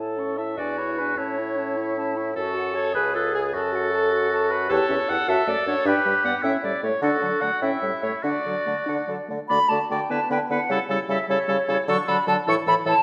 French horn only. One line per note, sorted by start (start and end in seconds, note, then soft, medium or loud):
0.00 0.19 E4 soft
0.18 0.39 C#4 soft
0.38 0.58 E4 soft
0.59 0.81 D4 soft
0.79 1.00 E4 soft
0.99 1.17 D4 soft
1.17 1.40 C#4 soft
1.39 1.58 E4 soft
1.57 1.78 C#4 soft
1.77 1.96 E4 soft
1.97 2.17 C#4 soft
2.16 2.34 E4 soft
2.35 2.55 A4 soft
2.54 2.75 F#4 soft
2.74 2.94 A4 soft
2.94 3.16 G#4 medium
3.15 3.35 F4 soft
3.33 3.53 G#4 medium
3.53 3.73 A4 medium
3.72 3.93 F#4 medium
3.91 4.13 A4 medium
4.11 4.30 F#4 medium
4.31 4.52 A4 medium
4.51 4.69 F#4 medium
4.69 4.83 G4 medium
4.89 4.98 C#4 soft
5.09 5.18 E4 medium
5.28 5.41 F#4 medium
5.47 5.56 A3 soft
5.67 5.76 D4 medium
5.85 5.99 D4 medium
6.05 6.14 G3 soft
6.24 6.33 B3 medium
6.44 6.57 C#4 medium
6.64 6.72 G3 soft
6.83 6.92 A3 medium
7.03 7.17 D4 medium
7.23 7.32 F#3 soft
7.42 7.51 A3 soft
7.63 7.77 C#4 medium
7.82 7.91 G3 soft
8.03 8.13 A3 soft
8.24 8.39 D4 medium
8.46 8.55 F#3 soft
8.66 8.76 A3 soft
8.86 9.01 D4 medium
9.07 9.17 F#3 soft
9.28 9.38 A3 soft
9.49 9.59 A3 medium
9.69 9.78 A3 medium
9.89 9.99 A3 medium
10.09 10.18 B3 medium
10.29 10.38 B3 medium
10.50 10.59 B3 medium
10.70 10.79 G3 medium
10.90 10.98 G3 medium
11.08 11.17 G3 medium
11.28 11.37 G3 medium
11.47 11.57 G3 medium
11.69 11.78 G3 medium
11.88 11.97 F#3 medium
12.08 12.17 F#3 medium
12.27 12.36 F#3 medium
12.47 12.56 E3 medium
12.66 12.75 E3 medium
12.85 12.94 E3 medium